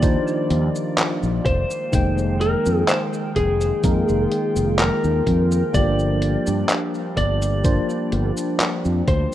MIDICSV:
0, 0, Header, 1, 6, 480
1, 0, Start_track
1, 0, Tempo, 952381
1, 974, Time_signature, 4, 2, 24, 8
1, 4709, End_track
2, 0, Start_track
2, 0, Title_t, "Lead electric guitar"
2, 0, Program_c, 0, 29
2, 0, Note_on_c, 0, 74, 105
2, 732, Note_off_c, 0, 74, 0
2, 734, Note_on_c, 0, 72, 99
2, 1215, Note_on_c, 0, 70, 90
2, 1228, Note_off_c, 0, 72, 0
2, 1437, Note_off_c, 0, 70, 0
2, 1455, Note_on_c, 0, 72, 95
2, 1520, Note_off_c, 0, 72, 0
2, 1694, Note_on_c, 0, 68, 88
2, 2394, Note_off_c, 0, 68, 0
2, 2417, Note_on_c, 0, 70, 93
2, 2894, Note_on_c, 0, 74, 102
2, 2910, Note_off_c, 0, 70, 0
2, 3610, Note_off_c, 0, 74, 0
2, 3616, Note_on_c, 0, 74, 105
2, 4574, Note_off_c, 0, 74, 0
2, 4576, Note_on_c, 0, 72, 97
2, 4709, Note_off_c, 0, 72, 0
2, 4709, End_track
3, 0, Start_track
3, 0, Title_t, "Ambient pad"
3, 0, Program_c, 1, 92
3, 0, Note_on_c, 1, 51, 81
3, 0, Note_on_c, 1, 55, 71
3, 0, Note_on_c, 1, 58, 74
3, 0, Note_on_c, 1, 65, 90
3, 0, Note_on_c, 1, 74, 77
3, 713, Note_off_c, 1, 65, 0
3, 716, Note_off_c, 1, 51, 0
3, 716, Note_off_c, 1, 55, 0
3, 716, Note_off_c, 1, 74, 0
3, 731, Note_on_c, 1, 53, 79
3, 731, Note_on_c, 1, 63, 71
3, 732, Note_on_c, 1, 79, 92
3, 733, Note_on_c, 1, 56, 73
3, 1683, Note_off_c, 1, 63, 0
3, 1692, Note_on_c, 1, 65, 73
3, 2873, Note_off_c, 1, 56, 0
3, 2881, Note_off_c, 1, 65, 0
3, 2896, Note_on_c, 1, 55, 74
3, 2897, Note_on_c, 1, 62, 74
3, 4709, Note_off_c, 1, 53, 0
3, 4709, Note_off_c, 1, 55, 0
3, 4709, Note_off_c, 1, 58, 0
3, 4709, Note_off_c, 1, 62, 0
3, 4709, Note_off_c, 1, 79, 0
3, 4709, End_track
4, 0, Start_track
4, 0, Title_t, "Tine electric piano"
4, 0, Program_c, 2, 4
4, 0, Control_c, 2, 64, 127
4, 0, Note_on_c, 2, 53, 84
4, 0, Note_on_c, 2, 62, 80
4, 0, Note_on_c, 2, 63, 81
4, 0, Note_on_c, 2, 67, 99
4, 10, Note_off_c, 2, 53, 0
4, 10, Note_on_c, 2, 53, 92
4, 13, Note_off_c, 2, 62, 0
4, 13, Note_on_c, 2, 62, 86
4, 15, Note_off_c, 2, 63, 0
4, 15, Note_on_c, 2, 63, 83
4, 18, Note_on_c, 2, 72, 101
4, 106, Note_off_c, 2, 53, 0
4, 108, Note_off_c, 2, 62, 0
4, 109, Note_off_c, 2, 63, 0
4, 110, Note_off_c, 2, 72, 0
4, 741, Note_off_c, 2, 67, 0
4, 741, Control_c, 2, 64, 0
4, 833, Control_c, 2, 64, 127
4, 967, Note_on_c, 2, 51, 91
4, 973, Note_on_c, 2, 56, 84
4, 977, Note_on_c, 2, 58, 83
4, 982, Note_on_c, 2, 79, 99
4, 1903, Note_off_c, 2, 51, 0
4, 1906, Note_off_c, 2, 56, 0
4, 1908, Note_off_c, 2, 58, 0
4, 1911, Note_off_c, 2, 79, 0
4, 1930, Note_on_c, 2, 51, 89
4, 1934, Note_on_c, 2, 56, 84
4, 1936, Note_on_c, 2, 58, 80
4, 1939, Note_on_c, 2, 70, 99
4, 2026, Note_off_c, 2, 51, 0
4, 2028, Note_off_c, 2, 56, 0
4, 2029, Note_off_c, 2, 58, 0
4, 2030, Note_off_c, 2, 70, 0
4, 2885, Note_on_c, 2, 53, 93
4, 2890, Note_on_c, 2, 58, 80
4, 2895, Note_on_c, 2, 62, 82
4, 2900, Note_on_c, 2, 67, 102
4, 2901, Control_c, 2, 64, 0
4, 2977, Control_c, 2, 64, 127
4, 3822, Note_off_c, 2, 53, 0
4, 3825, Note_off_c, 2, 58, 0
4, 3827, Note_off_c, 2, 62, 0
4, 3830, Note_off_c, 2, 67, 0
4, 3849, Note_on_c, 2, 53, 88
4, 3853, Note_on_c, 2, 58, 84
4, 3855, Note_on_c, 2, 62, 87
4, 3858, Note_on_c, 2, 72, 102
4, 3946, Note_off_c, 2, 53, 0
4, 3947, Note_off_c, 2, 58, 0
4, 3949, Note_off_c, 2, 62, 0
4, 3950, Note_off_c, 2, 72, 0
4, 4709, End_track
5, 0, Start_track
5, 0, Title_t, "Fretless electric bass"
5, 0, Program_c, 3, 35
5, 0, Note_on_c, 3, 39, 98
5, 78, Note_off_c, 3, 39, 0
5, 254, Note_on_c, 3, 39, 100
5, 342, Note_off_c, 3, 39, 0
5, 619, Note_on_c, 3, 34, 96
5, 699, Note_off_c, 3, 34, 0
5, 734, Note_on_c, 3, 29, 91
5, 822, Note_off_c, 3, 29, 0
5, 974, Note_on_c, 3, 29, 97
5, 1279, Note_off_c, 3, 29, 0
5, 1341, Note_on_c, 3, 41, 96
5, 1420, Note_off_c, 3, 41, 0
5, 1694, Note_on_c, 3, 29, 96
5, 1865, Note_off_c, 3, 29, 0
5, 1933, Note_on_c, 3, 41, 82
5, 2021, Note_off_c, 3, 41, 0
5, 2062, Note_on_c, 3, 29, 90
5, 2140, Note_off_c, 3, 29, 0
5, 2299, Note_on_c, 3, 29, 97
5, 2462, Note_off_c, 3, 29, 0
5, 2540, Note_on_c, 3, 39, 86
5, 2619, Note_off_c, 3, 39, 0
5, 2654, Note_on_c, 3, 41, 99
5, 2825, Note_off_c, 3, 41, 0
5, 2894, Note_on_c, 3, 31, 100
5, 3199, Note_off_c, 3, 31, 0
5, 3262, Note_on_c, 3, 43, 100
5, 3340, Note_off_c, 3, 43, 0
5, 3614, Note_on_c, 3, 31, 97
5, 3919, Note_off_c, 3, 31, 0
5, 4095, Note_on_c, 3, 31, 98
5, 4182, Note_off_c, 3, 31, 0
5, 4461, Note_on_c, 3, 41, 92
5, 4540, Note_off_c, 3, 41, 0
5, 4573, Note_on_c, 3, 38, 90
5, 4661, Note_off_c, 3, 38, 0
5, 4709, End_track
6, 0, Start_track
6, 0, Title_t, "Drums"
6, 13, Note_on_c, 9, 36, 124
6, 13, Note_on_c, 9, 42, 72
6, 13, Note_on_c, 9, 69, 43
6, 64, Note_off_c, 9, 36, 0
6, 64, Note_off_c, 9, 42, 0
6, 64, Note_off_c, 9, 69, 0
6, 140, Note_on_c, 9, 69, 27
6, 191, Note_off_c, 9, 69, 0
6, 255, Note_on_c, 9, 42, 65
6, 305, Note_off_c, 9, 42, 0
6, 382, Note_on_c, 9, 69, 54
6, 432, Note_off_c, 9, 69, 0
6, 494, Note_on_c, 9, 39, 125
6, 494, Note_on_c, 9, 42, 77
6, 494, Note_on_c, 9, 69, 44
6, 545, Note_off_c, 9, 39, 0
6, 545, Note_off_c, 9, 42, 0
6, 545, Note_off_c, 9, 69, 0
6, 621, Note_on_c, 9, 69, 27
6, 671, Note_off_c, 9, 69, 0
6, 733, Note_on_c, 9, 36, 106
6, 734, Note_on_c, 9, 42, 61
6, 784, Note_off_c, 9, 36, 0
6, 785, Note_off_c, 9, 42, 0
6, 861, Note_on_c, 9, 69, 55
6, 911, Note_off_c, 9, 69, 0
6, 974, Note_on_c, 9, 36, 122
6, 974, Note_on_c, 9, 42, 79
6, 974, Note_on_c, 9, 69, 48
6, 1024, Note_off_c, 9, 36, 0
6, 1024, Note_off_c, 9, 42, 0
6, 1024, Note_off_c, 9, 69, 0
6, 1100, Note_on_c, 9, 69, 27
6, 1150, Note_off_c, 9, 69, 0
6, 1214, Note_on_c, 9, 42, 62
6, 1265, Note_off_c, 9, 42, 0
6, 1340, Note_on_c, 9, 69, 60
6, 1390, Note_off_c, 9, 69, 0
6, 1454, Note_on_c, 9, 39, 119
6, 1454, Note_on_c, 9, 42, 76
6, 1454, Note_on_c, 9, 69, 46
6, 1504, Note_off_c, 9, 39, 0
6, 1504, Note_off_c, 9, 42, 0
6, 1504, Note_off_c, 9, 69, 0
6, 1580, Note_on_c, 9, 69, 28
6, 1630, Note_off_c, 9, 69, 0
6, 1693, Note_on_c, 9, 42, 66
6, 1694, Note_on_c, 9, 36, 58
6, 1744, Note_off_c, 9, 36, 0
6, 1744, Note_off_c, 9, 42, 0
6, 1820, Note_on_c, 9, 42, 35
6, 1820, Note_on_c, 9, 69, 55
6, 1870, Note_off_c, 9, 42, 0
6, 1870, Note_off_c, 9, 69, 0
6, 1933, Note_on_c, 9, 42, 74
6, 1933, Note_on_c, 9, 69, 42
6, 1934, Note_on_c, 9, 36, 116
6, 1984, Note_off_c, 9, 36, 0
6, 1984, Note_off_c, 9, 42, 0
6, 1984, Note_off_c, 9, 69, 0
6, 2061, Note_on_c, 9, 69, 29
6, 2111, Note_off_c, 9, 69, 0
6, 2175, Note_on_c, 9, 42, 62
6, 2225, Note_off_c, 9, 42, 0
6, 2300, Note_on_c, 9, 69, 53
6, 2350, Note_off_c, 9, 69, 0
6, 2414, Note_on_c, 9, 39, 117
6, 2414, Note_on_c, 9, 42, 74
6, 2414, Note_on_c, 9, 69, 46
6, 2465, Note_off_c, 9, 39, 0
6, 2465, Note_off_c, 9, 42, 0
6, 2465, Note_off_c, 9, 69, 0
6, 2541, Note_on_c, 9, 69, 26
6, 2591, Note_off_c, 9, 69, 0
6, 2654, Note_on_c, 9, 36, 62
6, 2655, Note_on_c, 9, 42, 63
6, 2704, Note_off_c, 9, 36, 0
6, 2705, Note_off_c, 9, 42, 0
6, 2780, Note_on_c, 9, 69, 57
6, 2831, Note_off_c, 9, 69, 0
6, 2893, Note_on_c, 9, 36, 115
6, 2894, Note_on_c, 9, 42, 79
6, 2894, Note_on_c, 9, 69, 49
6, 2944, Note_off_c, 9, 36, 0
6, 2945, Note_off_c, 9, 42, 0
6, 2945, Note_off_c, 9, 69, 0
6, 3020, Note_on_c, 9, 69, 30
6, 3071, Note_off_c, 9, 69, 0
6, 3134, Note_on_c, 9, 42, 68
6, 3184, Note_off_c, 9, 42, 0
6, 3261, Note_on_c, 9, 69, 57
6, 3311, Note_off_c, 9, 69, 0
6, 3373, Note_on_c, 9, 39, 114
6, 3373, Note_on_c, 9, 42, 82
6, 3373, Note_on_c, 9, 69, 50
6, 3424, Note_off_c, 9, 39, 0
6, 3424, Note_off_c, 9, 42, 0
6, 3424, Note_off_c, 9, 69, 0
6, 3500, Note_on_c, 9, 69, 28
6, 3550, Note_off_c, 9, 69, 0
6, 3614, Note_on_c, 9, 36, 56
6, 3614, Note_on_c, 9, 42, 69
6, 3664, Note_off_c, 9, 36, 0
6, 3665, Note_off_c, 9, 42, 0
6, 3741, Note_on_c, 9, 42, 38
6, 3741, Note_on_c, 9, 69, 58
6, 3792, Note_off_c, 9, 42, 0
6, 3792, Note_off_c, 9, 69, 0
6, 3854, Note_on_c, 9, 36, 116
6, 3854, Note_on_c, 9, 42, 74
6, 3854, Note_on_c, 9, 69, 49
6, 3904, Note_off_c, 9, 36, 0
6, 3904, Note_off_c, 9, 42, 0
6, 3904, Note_off_c, 9, 69, 0
6, 3981, Note_on_c, 9, 69, 29
6, 4032, Note_off_c, 9, 69, 0
6, 4094, Note_on_c, 9, 42, 64
6, 4145, Note_off_c, 9, 42, 0
6, 4220, Note_on_c, 9, 69, 59
6, 4271, Note_off_c, 9, 69, 0
6, 4334, Note_on_c, 9, 39, 115
6, 4334, Note_on_c, 9, 42, 78
6, 4334, Note_on_c, 9, 69, 48
6, 4385, Note_off_c, 9, 39, 0
6, 4385, Note_off_c, 9, 42, 0
6, 4385, Note_off_c, 9, 69, 0
6, 4460, Note_on_c, 9, 69, 29
6, 4511, Note_off_c, 9, 69, 0
6, 4574, Note_on_c, 9, 36, 98
6, 4574, Note_on_c, 9, 42, 65
6, 4624, Note_off_c, 9, 36, 0
6, 4625, Note_off_c, 9, 42, 0
6, 4709, End_track
0, 0, End_of_file